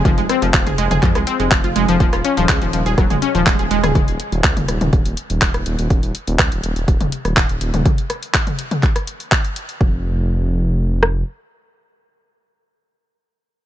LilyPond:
<<
  \new Staff \with { instrumentName = "Synth pluck" } { \clef bass \time 4/4 \key f \minor \tempo 4 = 123 f16 aes16 c'16 f16 f16 aes'16 aes16 aes'16 f16 aes16 c'16 aes16 f16 f'16 aes16 f16 | f16 f'16 des'16 f16 aes16 f16 f16 aes'16 ges16 aes16 des'16 f16 aes16 aes'16 aes16 aes'16 | r1 | r1 |
r1 | r1 | r1 | }
  \new Staff \with { instrumentName = "Detuned saw bass" } { \clef bass \time 4/4 \key f \minor f,,16 f,,16 r16 f,,16 ees,,16 f,,16 f,,16 f,,16 f,16 c,16 r16 f,,16 f,,16 f,,16 f,,16 f,,16 | ees,,16 ees,,16 r16 ees,,16 des,16 ees,,16 ees,,16 ees,,16 ees,,16 ees,,16 r16 ees,,16 ees,,16 ees,,16 ees,,16 ees,,16 | ees,,16 ees,,16 r16 ees,,16 des,16 ees,,16 ees,,16 ees,,16 ees,,16 ees,,16 r16 ees,,16 ees,,16 ees,,16 ees,,16 ees,,16 | ees,,16 ees,,16 r16 ees,,16 des,16 ees,,16 ees,,16 ees,,16 ees,,16 ees,,16 r16 ees,,16 ees,,16 ees,,16 ees,,16 ees,,16 |
r1 | f,,2. r4 | r1 | }
  \new DrumStaff \with { instrumentName = "Drums" } \drummode { \time 4/4 <hh bd toml>16 hh16 <hh ss>16 hh16 <hc hh bd>16 <hh toml>16 hh16 <hh toml>16 <hc hh bd>16 <hh ss>16 hh16 hh16 <hc hh bd>16 hh16 hh16 hh16 | <hh bd>16 <hh ss>16 hh16 hh16 <hc hh bd>16 hh16 hh16 hh16 <hh bd ss>16 <hh toml>16 hh16 hh16 <hc hh bd>16 hh16 hh16 <hh ss toml>16 | <hh bd toml>16 hh16 hh16 hh16 <hc hh bd>16 <hh toml>16 <hh ss>16 <hh toml>16 <hh bd>16 hh16 hh16 hh16 <hc hh bd>16 <hh ss>16 hh16 hh16 | <hh bd>16 hh16 hh16 hh16 <hc hh bd ss>16 hh16 hh16 hh16 <hh bd>16 <hh toml>16 hh16 <hh ss>16 <hc hh bd>16 hh16 hh16 <hh toml>16 |
<hh bd toml>16 hh16 <hh ss>16 hh16 <hc hh bd>16 <hh toml>16 hh16 <hh toml>16 <hc hh bd>16 <hh ss>16 hh16 hh16 <hc hh bd>16 hh16 hh16 hh16 | bd4 r4 r8 ss8 r4 | r4 r4 r4 r4 | }
>>